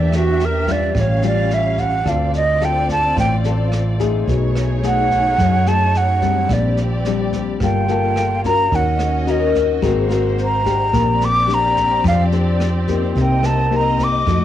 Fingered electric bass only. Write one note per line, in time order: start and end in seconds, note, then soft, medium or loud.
0.00 0.91 E2 medium
0.95 2.02 A1 medium
2.06 3.12 D2 medium
3.17 4.24 A1 medium
4.27 5.34 B1 loud
5.38 6.45 F#2 medium
6.49 7.56 A#1 medium
7.61 8.67 G1 medium
8.72 9.79 D#2 medium
9.83 10.90 G#1 loud
10.94 12.00 A#1 medium
12.05 13.12 F2 loud
13.15 14.22 C2 loud
14.27 14.45 F2 medium